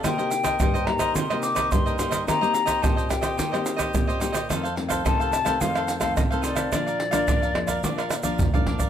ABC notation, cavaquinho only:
X:1
M:4/4
L:1/16
Q:1/4=108
K:Bb
V:1 name="Cavaquinho"
[EBce] [Bce] z [Bce] [EBce] [Bce] z [Bce] [EBce] [Bce]2 [Bce]2 [Bce] [EBce] [Bce] | [EGce] [Gce] z [Gce] [EGce] [Gce] z [Gce] [EGce] [Gce]2 [Gce]2 [Gce] [EGce] [Gce] | [EAcf] [Acf] z [Acf] [EAcf] [Acf] z [Acf] [EAcf] [Acf]2 [Acf]2 [Acf] [EAcf] [Acf] | [DBdf] [Bdf] z [Bdf] [DBdf] [Bdf] z [Bdf] [DBdf] [Bdf]2 [Bdf]2 [Bdf] [DBdf] [Bdf] |]